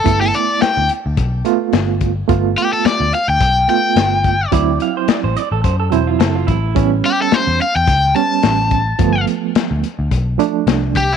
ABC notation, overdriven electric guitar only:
X:1
M:4/4
L:1/16
Q:"Swing 16ths" 1/4=107
K:G
V:1 name="Overdriven electric guitar"
A A d2 g2 z8 z2 | z2 G A d2 =f g3 g6 | z16 | z2 G A c2 =f g3 a6- |
a2 z12 G E |]